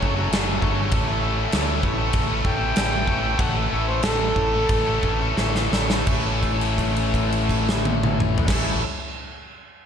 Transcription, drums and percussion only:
0.02 kick medium
0.32 snare loud
0.32 crash medium
0.62 kick medium
0.91 kick loud
0.91 crash medium
1.52 snare loud
1.52 crash medium
1.83 kick medium
2.13 kick loud
2.13 crash medium
2.45 kick medium
2.76 snare loud
2.76 crash medium
3.07 kick medium
3.39 kick loud
3.39 crash medium
4.03 snare loud
4.03 crash medium
4.36 kick medium
4.69 kick loud
4.69 crash medium
5.03 kick medium
5.37 snare medium
5.55 snare medium
5.73 snare loud
5.90 snare loud
6.07 kick loud
6.07 crash medium
6.43 kick medium
6.43 crash soft
6.61 crash soft
6.78 kick medium
6.78 crash soft
6.96 crash soft
7.14 kick medium
7.14 crash medium
7.32 crash medium
7.49 kick medium
7.49 crash medium
7.69 snare loud
7.85 high tom loud
8.03 mid tom loud
8.20 mid tom loud
8.38 floor tom loud
8.48 kick loud
8.48 snare loud
8.48 crash loud

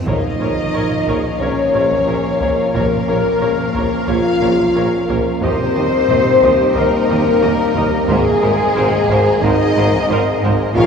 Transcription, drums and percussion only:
0.06 taiko medium
0.23 taiko low-mid soft
0.74 taiko low-mid medium
0.90 taiko low-mid soft
1.07 taiko medium
1.40 taiko medium
1.90 taiko medium
2.40 taiko medium
2.74 taiko medium
2.91 taiko low-mid medium
3.40 taiko low-mid medium
3.58 taiko low-mid soft
3.74 taiko medium
4.08 taiko medium
4.58 taiko medium
5.08 taiko medium
5.41 taiko loud
5.58 taiko low-mid medium
6.08 taiko low-mid medium
6.25 taiko low-mid medium
6.42 taiko medium
6.75 taiko medium
7.25 taiko medium
7.75 taiko medium
8.07 taiko loud
8.24 taiko low-mid medium
8.75 taiko low-mid medium
8.91 taiko low-mid medium
9.08 taiko medium
9.42 taiko medium
9.92 taiko medium
10.42 taiko medium
10.76 taiko medium

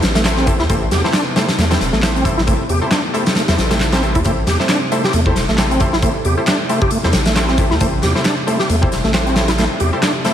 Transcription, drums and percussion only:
0.02 snare loud
0.02 closed hi-hat medium
0.15 snare loud
0.15 closed hi-hat medium
0.24 snare loud
0.24 clap loud
0.24 closed hi-hat medium
0.37 snare medium
0.47 kick loud
0.47 closed hi-hat medium
0.59 snare soft
0.70 kick loud
0.70 closed hi-hat medium
0.91 snare medium
0.91 closed hi-hat medium
1.05 snare soft
1.13 snare loud
1.13 clap loud
1.13 closed hi-hat medium
1.36 snare loud
1.36 closed hi-hat medium
1.49 snare loud
1.49 closed hi-hat medium
1.59 snare loud
1.59 closed hi-hat medium
1.71 snare loud
1.71 closed hi-hat medium
1.80 snare medium
1.80 closed hi-hat medium
1.93 snare soft
2.02 snare loud
2.02 clap loud
2.02 closed hi-hat medium
2.16 closed hi-hat soft
2.25 kick loud
2.25 closed hi-hat medium
2.38 snare soft
2.47 kick loud
2.47 closed hi-hat medium
2.69 closed hi-hat medium
2.91 snare loud
2.91 clap loud
2.91 closed hi-hat medium
3.14 closed hi-hat medium
3.26 snare loud
3.26 closed hi-hat medium
3.35 snare loud
3.35 closed hi-hat medium
3.48 snare loud
3.48 closed hi-hat medium
3.58 snare medium
3.58 closed hi-hat medium
3.71 snare loud
3.71 closed hi-hat medium
3.80 snare loud
3.80 clap loud
3.80 closed hi-hat medium
3.92 snare loud
3.92 closed hi-hat medium
4.03 closed hi-hat soft
4.15 kick medium
4.15 closed hi-hat medium
4.24 kick loud
4.24 closed hi-hat medium
4.47 snare medium
4.47 closed hi-hat medium
4.60 snare soft
4.69 snare loud
4.69 clap loud
4.69 closed hi-hat medium
4.92 closed hi-hat medium
5.04 snare medium
5.13 closed hi-hat medium
5.26 kick medium
5.36 snare medium
5.36 closed hi-hat medium
5.48 snare soft
5.58 snare loud
5.58 clap loud
5.58 closed hi-hat medium
5.71 closed hi-hat soft
5.80 kick medium
5.80 closed hi-hat medium
5.93 snare medium
6.02 kick loud
6.02 closed hi-hat medium
6.25 closed hi-hat medium
6.47 snare loud
6.47 clap loud
6.47 closed hi-hat medium
6.69 closed hi-hat medium
6.82 kick loud
6.91 closed hi-hat medium
7.03 snare soft
7.13 snare loud
7.13 closed hi-hat medium
7.25 snare medium
7.25 closed hi-hat medium
7.36 snare loud
7.36 clap loud
7.36 closed hi-hat medium
7.48 snare medium
7.58 kick medium
7.58 closed hi-hat medium
7.71 snare soft
7.81 kick loud
7.81 closed hi-hat medium
8.02 snare medium
8.02 closed hi-hat medium
8.16 snare soft
8.24 snare loud
8.24 clap loud
8.24 closed hi-hat medium
8.48 closed hi-hat medium
8.59 snare soft
8.70 closed hi-hat medium
8.83 kick loud
8.92 snare soft
8.92 closed hi-hat medium
9.04 snare soft
9.14 snare loud
9.14 clap loud
9.14 closed hi-hat medium
9.27 closed hi-hat soft
9.36 snare loud
9.36 closed hi-hat medium
9.48 snare loud
9.48 closed hi-hat medium
9.58 snare loud
9.58 closed hi-hat medium
9.80 closed hi-hat medium
10.02 snare loud
10.02 clap loud
10.02 closed hi-hat medium
10.25 snare soft
10.25 closed hi-hat medium

